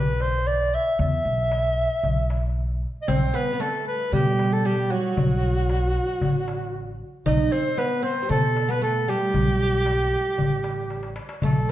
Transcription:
Already playing: B1 B4
0.20 C5, darbuka tek
0.47 D5
0.74 E5
0.99 E2 E5, darbuka dum
1.25 B1
1.52 darbuka tek
1.77 darbuka ka
2.03 B1, darbuka dum
2.30 darbuka tek
2.83 darbuka ka
3.02 D#5
3.08 B1 C4 C5, darbuka dum
3.34 B3 B4
3.53 B3
3.60 A3 A4, darbuka tek
3.87 B4
4.12 B2 G3 G4, darbuka dum
4.39 darbuka tek
4.53 A4
4.65 G3 G4
4.90 F#3 F#4
5.17 B1, darbuka dum
5.69 darbuka tek
6.21 A1, darbuka dum
6.48 darbuka tek
7.26 B1 D#4 D#5, darbuka dum
7.52 C4 C5
7.77 B3 B4, darbuka tek
8.03 C4 C5
8.23 G3
8.29 B2 A3 A4, darbuka dum
8.56 darbuka tek
8.69 B3 B4
8.82 A3 A4
9.08 G3 G4
9.34 B1, darbuka dum
9.86 darbuka tek
10.13 darbuka ka
10.38 A1, darbuka dum
10.64 darbuka tek
10.77 darbuka ka
10.90 darbuka tek
11.03 darbuka ka
11.16 darbuka tek
11.29 darbuka ka
11.42 B1 A3 A4, darbuka dum

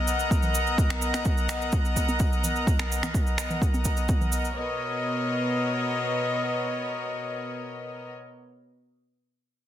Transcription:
Already playing: B3 A#4 D#5 F#5 A#5
0.07 cabasa
0.19 cabasa
0.31 kick, high conga, cabasa
0.43 low conga, cabasa
0.55 cabasa
0.67 cabasa
0.78 kick, cabasa
0.90 finger snap, high conga, cabasa
1.02 cabasa
1.14 finger snap, high conga, cabasa
1.25 kick, cabasa
1.38 cabasa
1.49 finger snap, cabasa
1.62 cabasa
1.72 kick, cabasa
1.85 cabasa
1.96 kick, cabasa
2.09 high conga, cabasa
2.19 kick, cabasa
2.33 cabasa
2.44 low conga, cabasa
2.56 cabasa
2.67 kick, cabasa
2.79 finger snap, high conga, cabasa
2.92 cabasa
3.03 finger snap, high conga, low conga, cabasa
3.14 kick, cabasa
3.27 cabasa
3.38 finger snap, cabasa
3.50 low conga, cabasa
3.62 kick, cabasa
3.74 high conga, cabasa
3.85 kick, cabasa
3.97 cabasa
4.08 kick, high conga, cabasa
4.21 low conga, cabasa
4.32 cabasa
4.45 cabasa
4.56 B2 B3 A#4 C#5 D#5

